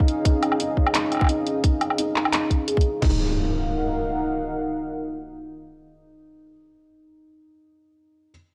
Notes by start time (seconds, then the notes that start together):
Already playing: C#4 D#4 G#4 D#5 F5
0.08 closed hi-hat
0.25 D#4, kick, closed hi-hat
0.43 closed hi-hat, low woodblock
0.52 low woodblock
0.60 D#4, closed hi-hat
0.77 kick
0.87 low woodblock
0.94 D#4, clap, closed hi-hat
1.12 closed hi-hat, low woodblock
1.15 low woodblock
1.17 low woodblock
1.20 kick, low woodblock
1.22 low woodblock
1.24 low woodblock
1.27 D#4, closed hi-hat, low woodblock
1.47 closed hi-hat
1.63 D#4, kick, closed hi-hat
1.81 closed hi-hat, low woodblock
1.90 low woodblock
1.98 D#4, closed hi-hat
2.16 clap
2.25 low woodblock
2.33 D#4, clap, closed hi-hat
2.50 kick, closed hi-hat
2.67 G#4, closed hi-hat
2.77 kick
2.81 closed hi-hat
3.02 D#4 A#4 F5 F#5, kick, crash, impact